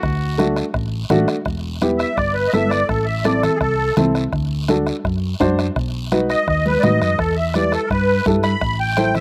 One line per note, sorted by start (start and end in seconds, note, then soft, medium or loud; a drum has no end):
0.00 0.60 D2 loud
0.00 0.58 F#4 medium
0.00 bombo low medium
0.00 bombo rim medium
0.00 high conga soft
0.00 long guiro medium
0.38 0.64 A3 medium
0.38 0.64 D4 medium
0.38 0.64 F#4 medium
0.38 bombo rim medium
0.38 high conga medium
0.38 short guiro medium
0.56 bombo rim medium
0.56 short guiro medium
0.74 1.03 A1 loud
0.74 bombo low medium
0.74 bombo rim medium
0.74 high conga soft
0.74 long guiro medium
1.10 1.25 A1 medium
1.10 1.35 A3 medium
1.10 1.36 D4 medium
1.10 1.36 F#4 loud
1.10 bombo rim medium
1.10 high conga medium
1.10 low conga medium
1.10 short guiro medium
1.28 bombo rim medium
1.28 short guiro medium
1.45 2.03 E1 loud
1.45 bombo low medium
1.45 bombo rim medium
1.45 long guiro medium
1.81 2.07 B3 medium
1.81 2.07 E4 medium
1.81 2.07 G4 medium
1.81 bombo rim medium
1.81 high conga medium
1.81 short guiro medium
1.98 2.16 E5 medium
1.98 bombo rim medium
1.98 short guiro medium
2.16 2.46 G1 loud
2.16 2.34 D5 medium
2.16 bombo low medium
2.16 bombo rim medium
2.16 long guiro medium
2.34 2.52 B4 medium
2.48 2.51 D#5 medium
2.52 2.82 G1 loud
2.52 2.79 B3 medium
2.52 2.79 E4 medium
2.52 2.79 A4 medium
2.52 2.70 E5 medium
2.52 bombo rim medium
2.52 high conga medium
2.52 short guiro medium
2.69 2.88 D5 medium
2.69 bombo rim medium
2.69 short guiro medium
2.88 3.46 A1 loud
2.88 3.06 A4 medium
2.88 bombo low medium
2.88 bombo rim medium
2.88 long guiro medium
3.06 3.24 E5 medium
3.24 3.50 C4 medium
3.24 3.50 E4 medium
3.24 3.50 A4 medium
3.24 3.42 D5 medium
3.24 bombo rim medium
3.24 high conga medium
3.24 short guiro medium
3.42 3.59 A4 medium
3.42 bombo rim medium
3.42 low conga medium
3.42 short guiro medium
3.56 3.59 G#4 medium
3.60 3.90 C2 loud
3.60 3.95 A4 medium
3.60 bombo low medium
3.60 bombo rim medium
3.60 long guiro medium
3.97 4.25 C2 loud
3.97 4.22 C4 medium
3.97 4.22 E4 medium
3.97 4.22 A4 medium
3.97 bombo rim medium
3.97 high conga medium
3.97 low conga medium
3.97 short guiro medium
4.15 bombo rim medium
4.15 short guiro medium
4.32 4.90 D2 loud
4.32 bombo low medium
4.32 bombo rim medium
4.32 long guiro medium
4.68 4.93 D4 medium
4.68 4.94 F#4 medium
4.68 4.94 A4 medium
4.68 bombo rim medium
4.68 high conga medium
4.68 short guiro medium
4.87 bombo rim medium
4.87 short guiro medium
5.04 5.33 F#2 loud
5.04 bombo low medium
5.04 bombo rim medium
5.04 long guiro medium
5.40 5.69 F#2 loud
5.40 5.65 D4 loud
5.40 5.65 F#4 medium
5.40 5.65 C5 loud
5.40 bombo low medium
5.40 bombo rim medium
5.40 high conga medium
5.40 short guiro medium
5.59 bombo rim medium
5.59 short guiro medium
5.76 6.33 B1 medium
5.76 bombo low medium
5.76 bombo rim medium
5.76 long guiro medium
6.12 6.37 D#4 medium
6.12 6.37 F#4 medium
6.12 6.37 B4 medium
6.12 bombo rim medium
6.12 high conga medium
6.12 short guiro medium
6.30 6.47 D#5 medium
6.30 bombo rim medium
6.30 short guiro medium
6.47 6.76 D#2 loud
6.47 6.65 D#5 medium
6.47 bombo low medium
6.47 bombo rim medium
6.47 long guiro medium
6.66 6.83 B4 loud
6.66 high conga medium
6.80 6.99 A2 medium
6.80 7.08 D#4 medium
6.80 7.08 F#4 medium
6.80 6.82 D5 medium
6.80 7.00 D#5 medium
6.80 bombo rim medium
6.80 high conga medium
6.80 low conga medium
6.80 short guiro medium
6.84 7.09 B4 medium
7.01 7.17 F#2 medium
7.01 7.19 D#5 medium
7.01 bombo rim medium
7.01 short guiro medium
7.18 7.76 E2 medium
7.18 7.36 A4 medium
7.18 bombo low medium
7.18 bombo rim medium
7.18 long guiro medium
7.37 7.54 E5 medium
7.54 7.80 E4 medium
7.54 7.80 G4 medium
7.54 7.80 B4 medium
7.54 7.72 D5 medium
7.54 bombo rim medium
7.54 high conga medium
7.54 short guiro medium
7.72 7.90 A4 medium
7.72 bombo rim medium
7.72 short guiro medium
7.86 7.89 A#4 medium
7.86 bombo low medium
7.91 8.19 G2 loud
7.91 8.25 B4 loud
7.91 bombo rim medium
7.91 long guiro medium
8.26 8.54 G2 loud
8.26 8.51 E4 medium
8.26 8.51 G4 medium
8.26 8.52 A4 medium
8.26 bombo low medium
8.26 bombo rim medium
8.26 high conga medium
8.26 short guiro medium
8.43 8.78 B5 loud
8.43 bombo rim medium
8.43 short guiro medium
8.61 9.19 A1 medium
8.61 bombo low medium
8.61 bombo rim medium
8.61 long guiro medium
8.80 9.14 G5 loud
8.97 9.20 E4 medium
8.97 9.20 A4 medium
8.97 9.20 C5 medium
8.97 bombo rim medium
8.97 high conga medium
8.97 short guiro medium
9.15 9.20 E5 medium
9.15 bombo rim medium
9.15 low conga medium
9.15 short guiro medium